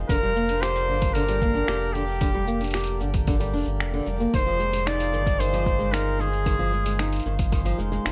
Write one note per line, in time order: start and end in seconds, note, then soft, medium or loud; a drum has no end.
0.00 1.78 F4 medium
0.00 1.17 C5 medium
0.08 0.90 F1 loud
0.08 4.33 D3 medium
0.08 0.17 D3 medium
0.08 0.63 A#4 loud
0.08 kick loud
0.08 open hi-hat medium
0.08 cabasa soft
0.23 0.35 G3 loud
0.23 5.58 A#3 medium
0.36 0.48 A#3 medium
0.36 cabasa medium
0.49 0.61 D4 medium
0.49 4.98 G4 medium
0.49 open hi-hat soft
0.49 cabasa soft
0.62 0.87 G4 loud
0.62 1.15 C5 loud
0.62 finger snap loud
0.62 open hi-hat medium
0.62 cabasa soft
0.75 6.03 D5 medium
0.75 open hi-hat soft
0.88 1.63 G1 medium
0.88 0.96 D3 medium
1.02 kick loud
1.02 open hi-hat soft
1.02 cabasa medium
1.14 1.23 D3 medium
1.14 1.95 A#4 loud
1.14 open hi-hat medium
1.14 cabasa soft
1.29 1.41 G3 loud
1.29 open hi-hat soft
1.42 1.54 A#3 medium
1.42 kick loud
1.42 cabasa medium
1.55 1.67 D4 medium
1.55 cabasa soft
1.68 3.02 F1 medium
1.68 1.94 G4 loud
1.68 finger snap loud
1.68 open hi-hat medium
1.68 cabasa soft
1.94 2.02 D3 medium
1.94 3.00 G4 loud
1.94 cabasa medium
2.08 cabasa soft
2.11 cabasa soft
2.14 cabasa soft
2.21 2.29 D3 medium
2.21 kick loud
2.21 open hi-hat medium
2.21 cabasa soft
2.28 cabasa soft
2.31 2.46 G3 loud
2.31 cabasa soft
2.47 2.60 A#3 medium
2.47 cabasa medium
2.61 2.73 D4 medium
2.61 open hi-hat soft
2.64 open hi-hat soft
2.68 open hi-hat soft
2.71 finger snap loud
2.71 open hi-hat soft
2.74 3.00 G4 loud
2.74 open hi-hat medium
2.74 cabasa soft
2.77 open hi-hat soft
2.80 open hi-hat soft
2.84 open hi-hat soft
2.87 open hi-hat soft
3.00 3.53 G1 loud
3.00 3.08 D3 medium
3.00 cabasa medium
3.14 kick loud
3.14 open hi-hat soft
3.14 cabasa soft
3.27 3.35 D3 medium
3.27 kick loud
3.27 open hi-hat medium
3.27 cabasa soft
3.40 3.52 G3 loud
3.40 open hi-hat soft
3.53 3.64 F1 loud
3.53 3.66 D4 loud
3.53 cabasa soft
3.56 cabasa soft
3.58 cabasa medium
3.60 cabasa medium
3.63 cabasa medium
3.65 3.82 G1 medium
3.65 cabasa medium
3.67 cabasa soft
3.80 4.01 F1 medium
3.80 finger snap loud
3.80 cabasa soft
3.94 4.06 D3 loud
4.07 4.27 F1 medium
4.07 4.19 G3 medium
4.07 cabasa medium
4.20 4.32 A#3 medium
4.20 cabasa soft
4.33 5.15 F1 loud
4.33 8.12 D#3 loud
4.33 4.41 D#3 medium
4.33 4.89 C5 loud
4.33 kick loud
4.33 open hi-hat medium
4.33 cabasa soft
4.43 4.58 F3 loud
4.43 8.12 G#3 medium
4.59 4.72 G#3 medium
4.59 cabasa medium
4.73 4.85 G#3 loud
4.73 open hi-hat soft
4.73 cabasa soft
4.86 5.12 D#4 loud
4.86 5.41 D5 loud
4.86 finger snap loud
4.86 open hi-hat medium
4.86 cabasa soft
4.93 8.12 C5 medium
4.99 8.12 F4 medium
4.99 open hi-hat soft
5.13 7.21 G1 loud
5.13 5.21 D#3 medium
5.13 cabasa medium
5.26 kick loud
5.26 open hi-hat soft
5.26 cabasa soft
5.40 5.47 D#3 medium
5.40 5.95 C5 loud
5.40 open hi-hat medium
5.40 cabasa soft
5.53 5.65 F3 loud
5.53 open hi-hat soft
5.66 5.78 G#3 medium
5.66 kick loud
5.66 cabasa medium
5.79 5.91 G#3 loud
5.79 cabasa medium
5.93 6.18 D#4 loud
5.93 6.22 A#4 loud
5.93 finger snap loud
5.93 open hi-hat medium
5.93 cabasa soft
6.19 6.27 D#3 medium
6.19 7.26 G#4 loud
6.19 cabasa medium
6.33 cabasa soft
6.46 6.53 D#3 medium
6.46 kick loud
6.46 open hi-hat medium
6.46 cabasa soft
6.59 6.71 F3 loud
6.73 6.85 G#3 medium
6.73 cabasa medium
6.86 6.98 G#3 medium
6.86 open hi-hat soft
6.86 cabasa soft
6.99 7.25 D#4 loud
6.99 finger snap medium
6.99 open hi-hat medium
6.99 cabasa soft
7.13 open hi-hat soft
7.16 open hi-hat soft
7.20 open hi-hat soft
7.23 7.74 G1 loud
7.23 7.33 D#3 medium
7.23 open hi-hat soft
7.23 cabasa medium
7.39 kick loud
7.39 open hi-hat soft
7.39 cabasa soft
7.52 7.60 D#3 medium
7.52 kick loud
7.52 open hi-hat medium
7.52 cabasa soft
7.65 7.77 F3 loud
7.65 open hi-hat soft
7.78 7.99 F1 loud
7.78 7.91 G#3 medium
7.78 cabasa medium
7.92 8.04 G#3 loud
7.92 cabasa soft
8.05 8.12 F1 medium
8.05 8.12 D#4 loud
8.05 finger snap loud
8.05 open hi-hat medium
8.05 cabasa soft